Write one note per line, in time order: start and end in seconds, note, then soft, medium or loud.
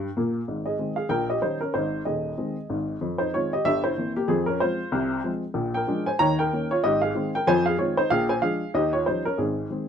0.00 0.31 G4 medium
0.00 0.17 G5 medium
0.17 0.41 A#2 medium
0.17 0.40 A#3 medium
0.48 0.75 G#1 soft
0.48 0.75 G#2 soft
0.66 0.95 G#4 soft
0.66 0.93 D#5 medium
0.79 0.96 D#3 soft
0.79 0.96 G#3 soft
0.79 0.97 C4 soft
0.96 1.09 G#4 soft
0.96 1.08 F5 medium
1.09 1.37 A#1 medium
1.09 1.37 A#2 medium
1.09 1.28 A#4 medium
1.09 1.26 G5 medium
1.30 1.42 G4 medium
1.30 1.41 D#5 medium
1.42 1.59 D#3 soft
1.42 1.60 G3 soft
1.42 1.60 C#4 soft
1.42 1.60 D#4 medium
1.42 1.58 C5 medium
1.61 1.74 C#4 soft
1.61 1.72 A#4 medium
1.74 2.00 G#1 medium
1.74 2.00 G#2 medium
1.74 2.04 D#4 soft
1.74 2.01 C5 medium
2.05 2.31 D#1 medium
2.05 2.31 D#2 soft
2.05 2.84 G#4 soft
2.05 2.76 D#5 medium
2.38 2.55 D#3 soft
2.38 2.56 G#3 soft
2.38 2.55 C4 soft
2.70 2.95 G#1 medium
2.70 2.95 G#2 medium
3.01 3.28 F2 medium
3.01 3.28 F3 soft
3.18 3.33 D#4 medium
3.18 3.30 C5 medium
3.34 3.51 D#3 soft
3.34 3.52 G#3 soft
3.34 3.52 C4 soft
3.34 3.51 F4 medium
3.34 3.50 C#5 medium
3.53 3.65 G4 medium
3.53 3.64 D#5 medium
3.65 3.92 G1 medium
3.65 3.92 G2 medium
3.65 3.83 G4 medium
3.65 3.81 E5 loud
3.84 4.14 E4 medium
3.84 4.11 C5 medium
3.98 4.15 E3 soft
3.98 4.15 A#3 soft
3.98 4.15 C4 soft
4.16 4.28 A#3 medium
4.16 4.27 G4 medium
4.28 4.55 F2 medium
4.28 4.56 F3 medium
4.28 4.46 C4 medium
4.28 4.44 G#4 medium
4.46 4.60 C#4 medium
4.46 4.58 A#4 medium
4.60 4.78 F3 soft
4.60 4.79 G#3 soft
4.60 4.79 C4 soft
4.60 5.39 F4 medium
4.60 5.30 C5 medium
4.92 5.19 C2 medium
4.92 5.19 C3 medium
5.24 5.42 F3 soft
5.24 5.42 G#3 soft
5.24 5.42 C4 soft
5.54 5.82 A#1 medium
5.54 5.82 A#2 medium
5.74 6.05 A#4 medium
5.74 6.02 G5 medium
5.87 6.05 F3 soft
5.87 6.05 G#3 soft
5.87 6.06 D4 soft
6.06 6.19 C5 medium
6.06 6.18 G#5 medium
6.19 6.47 D#2 medium
6.19 6.47 D#3 medium
6.19 6.37 C#5 medium
6.19 6.35 A#5 loud
6.39 6.69 A#4 medium
6.39 6.66 G5 medium
6.53 6.70 D#3 soft
6.53 6.70 A#3 soft
6.53 6.70 C#4 soft
6.71 6.83 F4 medium
6.71 6.82 C#5 medium
6.84 7.11 G#1 medium
6.84 7.11 G#2 medium
6.84 7.02 G4 medium
6.84 6.99 D#5 loud
7.02 7.32 G#4 medium
7.02 7.29 F5 medium
7.15 7.33 D#3 soft
7.15 7.32 G#3 medium
7.15 7.33 C4 soft
7.35 7.47 A#4 soft
7.35 7.46 G5 medium
7.47 7.74 F2 medium
7.47 7.74 F3 medium
7.47 7.65 C5 medium
7.47 7.63 G#5 loud
7.66 7.79 G#4 medium
7.66 7.77 F5 medium
7.78 7.96 D#3 soft
7.78 7.96 G#3 soft
7.78 7.96 C4 soft
7.78 7.97 F4 medium
7.78 7.95 C#5 medium
7.97 8.10 D#4 medium
7.97 8.09 C5 medium
8.10 8.38 A#1 medium
8.10 8.38 A#2 medium
8.10 8.29 G#4 medium
8.10 8.26 F5 loud
8.29 8.41 C5 medium
8.29 8.40 G#5 medium
8.42 8.60 F3 soft
8.42 8.60 G#3 soft
8.42 8.60 D4 soft
8.42 8.72 G#4 medium
8.42 8.69 F5 medium
8.74 9.01 D#2 medium
8.74 9.02 D#3 medium
8.74 8.93 G4 medium
8.74 8.90 D#5 medium
8.93 9.06 F4 medium
8.93 9.04 C#5 medium
9.06 9.24 F3 soft
9.06 9.25 G3 soft
9.06 9.24 C#4 soft
9.06 9.24 D#4 medium
9.06 9.22 C5 medium
9.25 9.38 C#4 medium
9.25 9.36 A#4 medium
9.38 9.65 G#1 medium
9.38 9.65 G#2 medium
9.38 9.70 C4 soft
9.38 9.88 G#4 medium
9.70 9.87 D#3 soft
9.70 9.88 G#3 soft
9.70 9.88 C4 soft